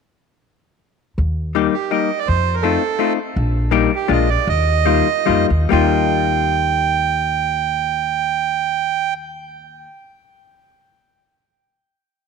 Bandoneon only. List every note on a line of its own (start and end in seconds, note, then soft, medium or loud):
1.74 1.91 G4 medium
1.91 2.20 D#5 medium
2.19 2.28 D5 medium
2.27 2.56 C5 medium
2.54 2.64 A#4 medium
2.62 3.13 A4 medium
3.95 4.12 G4 medium
4.12 4.30 D#5 medium
4.30 4.48 D5 medium
4.49 5.47 D#5 medium
5.71 9.14 G5 medium